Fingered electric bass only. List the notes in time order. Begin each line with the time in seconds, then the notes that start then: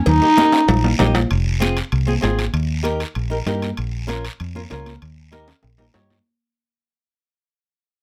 0.07 D#2
0.69 A#1
1.00 A#1
1.31 F1
1.92 C2
2.23 G#1
2.53 D#2
3.16 A#1
3.46 G2
3.78 A#1
4.40 F2
4.72 C#2
5.02 D#2
5.64 A#1
5.95 G2